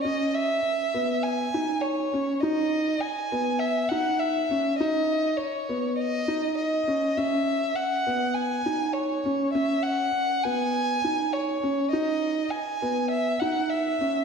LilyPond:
<<
  \new Staff \with { instrumentName = "Violin" } { \time 4/4 \key b \major \tempo 4 = 101 dis''8 e''4. gis''4 cis''4 | dis''4 gis''4 e''8 fis''8 e''4 | dis''4 cis''4 dis''4 dis''4 | e''4 fis''4 gis''4 cis''4 |
e''8 fis''4 gis''4. cis''4 | dis''4 gis''4 e''8 fis''8 e''4 | }
  \new Staff \with { instrumentName = "Felt piano" } { \time 4/4 \key b \major cis'4 r8 b4 dis'4 cis'8 | dis'4 r8 b4 dis'4 cis'8 | dis'4 r8 b4 dis'4 cis'8 | cis'4 r8 b4 dis'4 cis'8 |
cis'4 r8 b4 dis'4 cis'8 | dis'4 r8 b4 dis'4 cis'8 | }
>>